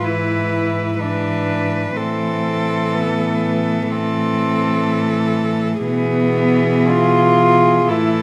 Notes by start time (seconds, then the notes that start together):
Already playing: G#2
0.02 E3 E4 B4
0.99 E3 D4 B4
1.96 A2 E3 C4 A4
2.95 B3
3.91 E3 C4 A4
5.85 B2 E3 B3 G#4
6.88 F4
7.88 A2 E3 E4 A4